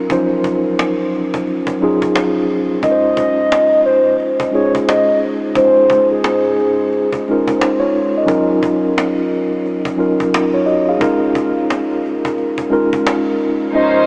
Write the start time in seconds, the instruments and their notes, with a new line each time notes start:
Already playing: tine electric piano F#3 C#4 D#4 F4 A#4
0.09 tine electric piano F3 C#4 D#4 F4 C5, cajon bass
0.16 tine electric piano F#3
0.44 cajon bass
0.79 cajon slap
1.15 cajon slap
1.34 cajon bass
1.47 cajon slap
1.67 cajon bass
1.80 tine electric piano F#3 C#4 D#4 F4 G#4, cajon slap
2.02 cajon bass
2.16 cajon slap
2.50 cajon slap
2.81 tine electric piano G#3 C#4 D#4 F4 A#4, soft synth lead D#5, cajon bass
2.91 tine electric piano C5
3.17 cajon bass
3.52 cajon slap
3.86 soft synth lead C5, cajon slap
4.20 cajon slap
4.40 cajon bass
4.51 tine electric piano G#3 C#4 D#4 F4 G#4, soft synth lead C#5, cajon slap
4.75 cajon bass
4.87 soft synth lead D#5, cajon slap
5.23 cajon slap
5.55 tine electric piano G#3 C#4 D#4 F4 C5, soft synth lead C5, cajon bass
5.90 cajon bass
6.12 soft synth lead G#4
6.24 cajon slap
6.60 cajon slap
6.93 cajon slap
7.13 cajon bass
7.28 tine electric piano G#3 C#4 D#4 F4 A#4, cajon slap
7.48 cajon bass
7.60 tine electric piano D#4 C5, cajon slap
7.80 tine electric piano F4 C#5
7.96 cajon slap
8.17 tine electric piano D#5
8.26 tine electric piano F#3 C#4 D#4 F4 A#4, cajon bass
8.63 cajon bass
8.98 cajon slap
9.34 cajon slap
9.66 cajon slap
9.85 cajon bass
9.97 tine electric piano F#3 C#4 D#4 F4 A#4, cajon slap
10.20 cajon bass
10.34 cajon slap
10.54 tine electric piano F4 C#5
10.66 tine electric piano F#4 D#5, cajon slap
10.89 tine electric piano G#4 F5
10.98 tine electric piano G#3 C#4 D#4 F4 A#4, cajon bass
11.35 cajon bass
11.70 cajon slap
12.06 cajon slap
12.25 cajon bass
12.38 cajon slap
12.58 cajon bass
12.70 tine electric piano G#3 C#4 D#4 F4 A#4, cajon slap
12.93 cajon bass
13.07 cajon slap
13.41 cajon slap
13.72 string section F3 C#4 D#4 C5, tine electric piano G#3 C#4 D#4 F4 C5, soft synth lead D#5